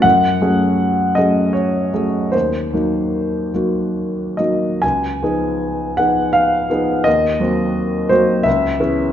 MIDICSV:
0, 0, Header, 1, 2, 480
1, 0, Start_track
1, 0, Tempo, 751880
1, 27, Time_signature, 3, 2, 24, 8
1, 987, Tempo, 790514
1, 1467, Tempo, 808625
1, 2427, Tempo, 874636
1, 2907, Tempo, 774194
1, 3387, Tempo, 744417
1, 3867, Tempo, 705882
1, 5756, End_track
2, 0, Start_track
2, 0, Title_t, "Grand piano"
2, 0, Program_c, 0, 0
2, 0, Control_c, 0, 64, 127
2, 13, Note_on_c, 0, 78, 76
2, 23, Note_on_c, 0, 42, 43
2, 37, Control_c, 0, 64, 0
2, 139, Control_c, 0, 64, 127
2, 256, Note_off_c, 0, 42, 0
2, 264, Note_on_c, 0, 54, 31
2, 266, Note_on_c, 0, 57, 31
2, 268, Note_on_c, 0, 61, 30
2, 269, Note_on_c, 0, 68, 35
2, 719, Note_off_c, 0, 54, 0
2, 720, Note_off_c, 0, 57, 0
2, 721, Note_off_c, 0, 61, 0
2, 722, Note_off_c, 0, 68, 0
2, 735, Note_on_c, 0, 75, 57
2, 738, Note_off_c, 0, 78, 0
2, 747, Note_on_c, 0, 57, 27
2, 749, Note_on_c, 0, 54, 28
2, 753, Note_on_c, 0, 61, 28
2, 755, Note_on_c, 0, 68, 31
2, 977, Note_on_c, 0, 73, 46
2, 982, Note_off_c, 0, 75, 0
2, 1200, Note_off_c, 0, 57, 0
2, 1201, Note_off_c, 0, 54, 0
2, 1203, Note_off_c, 0, 61, 0
2, 1204, Note_off_c, 0, 68, 0
2, 1224, Note_on_c, 0, 54, 23
2, 1226, Note_on_c, 0, 57, 24
2, 1226, Note_on_c, 0, 61, 25
2, 1228, Note_on_c, 0, 68, 27
2, 1443, Note_off_c, 0, 54, 0
2, 1444, Note_off_c, 0, 57, 0
2, 1444, Note_off_c, 0, 61, 0
2, 1445, Note_off_c, 0, 68, 0
2, 1455, Note_on_c, 0, 72, 50
2, 1462, Note_off_c, 0, 73, 0
2, 1462, Note_on_c, 0, 39, 31
2, 1480, Control_c, 0, 64, 0
2, 1570, Control_c, 0, 64, 127
2, 1699, Note_off_c, 0, 39, 0
2, 1703, Note_on_c, 0, 54, 23
2, 1703, Note_on_c, 0, 58, 23
2, 1710, Note_on_c, 0, 63, 24
2, 1710, Note_on_c, 0, 66, 26
2, 2159, Note_off_c, 0, 54, 0
2, 2159, Note_off_c, 0, 58, 0
2, 2162, Note_off_c, 0, 63, 0
2, 2162, Note_off_c, 0, 66, 0
2, 2183, Note_on_c, 0, 54, 21
2, 2184, Note_on_c, 0, 58, 22
2, 2187, Note_on_c, 0, 63, 21
2, 2191, Note_on_c, 0, 66, 23
2, 2643, Note_off_c, 0, 54, 0
2, 2644, Note_off_c, 0, 58, 0
2, 2645, Note_off_c, 0, 63, 0
2, 2647, Note_off_c, 0, 66, 0
2, 2657, Note_on_c, 0, 75, 44
2, 2661, Note_off_c, 0, 72, 0
2, 2667, Note_on_c, 0, 54, 21
2, 2669, Note_on_c, 0, 58, 22
2, 2672, Note_on_c, 0, 63, 21
2, 2673, Note_on_c, 0, 66, 24
2, 2885, Note_off_c, 0, 54, 0
2, 2886, Note_off_c, 0, 58, 0
2, 2887, Note_off_c, 0, 63, 0
2, 2887, Note_off_c, 0, 66, 0
2, 2900, Note_on_c, 0, 80, 63
2, 2902, Note_off_c, 0, 75, 0
2, 2909, Note_on_c, 0, 37, 34
2, 2916, Control_c, 0, 64, 0
2, 3024, Control_c, 0, 64, 127
2, 3146, Note_off_c, 0, 37, 0
2, 3153, Note_on_c, 0, 53, 25
2, 3156, Note_on_c, 0, 59, 26
2, 3160, Note_on_c, 0, 68, 27
2, 3161, Note_on_c, 0, 63, 26
2, 3601, Note_off_c, 0, 53, 0
2, 3603, Note_off_c, 0, 59, 0
2, 3605, Note_off_c, 0, 63, 0
2, 3605, Note_off_c, 0, 68, 0
2, 3623, Note_off_c, 0, 80, 0
2, 3625, Note_on_c, 0, 78, 59
2, 3629, Note_on_c, 0, 53, 26
2, 3636, Note_on_c, 0, 59, 25
2, 3637, Note_on_c, 0, 68, 27
2, 3639, Note_on_c, 0, 63, 26
2, 3855, Note_on_c, 0, 77, 64
2, 3865, Note_off_c, 0, 78, 0
2, 4086, Note_off_c, 0, 53, 0
2, 4089, Note_off_c, 0, 59, 0
2, 4090, Note_off_c, 0, 68, 0
2, 4091, Note_off_c, 0, 63, 0
2, 4107, Note_on_c, 0, 53, 29
2, 4109, Note_on_c, 0, 59, 28
2, 4115, Note_on_c, 0, 63, 27
2, 4118, Note_on_c, 0, 68, 29
2, 4324, Note_off_c, 0, 53, 0
2, 4325, Note_off_c, 0, 59, 0
2, 4328, Note_off_c, 0, 63, 0
2, 4330, Note_off_c, 0, 68, 0
2, 4338, Note_on_c, 0, 75, 66
2, 4344, Note_off_c, 0, 77, 0
2, 4349, Note_on_c, 0, 39, 38
2, 4361, Control_c, 0, 64, 0
2, 4476, Control_c, 0, 64, 127
2, 4581, Note_off_c, 0, 39, 0
2, 4582, Note_on_c, 0, 54, 32
2, 4587, Note_on_c, 0, 58, 32
2, 4590, Note_on_c, 0, 66, 34
2, 4591, Note_on_c, 0, 60, 32
2, 5039, Note_off_c, 0, 54, 0
2, 5041, Note_off_c, 0, 58, 0
2, 5042, Note_off_c, 0, 66, 0
2, 5043, Note_off_c, 0, 60, 0
2, 5055, Note_on_c, 0, 72, 64
2, 5062, Note_on_c, 0, 54, 32
2, 5063, Note_off_c, 0, 75, 0
2, 5063, Note_on_c, 0, 58, 31
2, 5066, Note_on_c, 0, 60, 31
2, 5069, Note_on_c, 0, 66, 35
2, 5278, Note_off_c, 0, 54, 0
2, 5278, Note_off_c, 0, 58, 0
2, 5280, Note_off_c, 0, 60, 0
2, 5281, Note_off_c, 0, 66, 0
2, 5286, Note_on_c, 0, 76, 67
2, 5297, Note_on_c, 0, 37, 44
2, 5298, Note_off_c, 0, 72, 0
2, 5317, Control_c, 0, 64, 0
2, 5428, Control_c, 0, 64, 127
2, 5531, Note_off_c, 0, 37, 0
2, 5533, Note_off_c, 0, 76, 0
2, 5534, Note_on_c, 0, 52, 31
2, 5535, Note_on_c, 0, 59, 32
2, 5538, Note_on_c, 0, 68, 36
2, 5539, Note_on_c, 0, 61, 34
2, 5756, Note_off_c, 0, 52, 0
2, 5756, Note_off_c, 0, 59, 0
2, 5756, Note_off_c, 0, 61, 0
2, 5756, Note_off_c, 0, 68, 0
2, 5756, End_track
0, 0, End_of_file